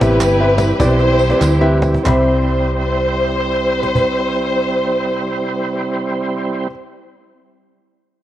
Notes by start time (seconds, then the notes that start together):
Already playing: C3 E3 G3 B3 E4 G4
0.01 A1 C4 E4 G4 B4 E5, cajon slap, tambourine
0.21 G1, clap, tambourine
0.40 C4 E4 G4 B4 E5
0.58 cajon slap, tambourine
0.79 B1 C4 E4 G4 B4 C5 D5, cajon bass, cajon slap, tambourine
0.99 cajon slap
1.19 tambourine
1.30 C4 E4 G4 B4 D5, cajon slap
1.41 D2, cajon slap, clap, tambourine
1.61 C4 E4 G4 B4 E5
1.82 cajon slap, tambourine
1.94 cajon slap
2.03 C2 G3 C4 E4 G4 C5 E5 B5, cajon bass, clap
3.83 cajon slap
3.95 cajon bass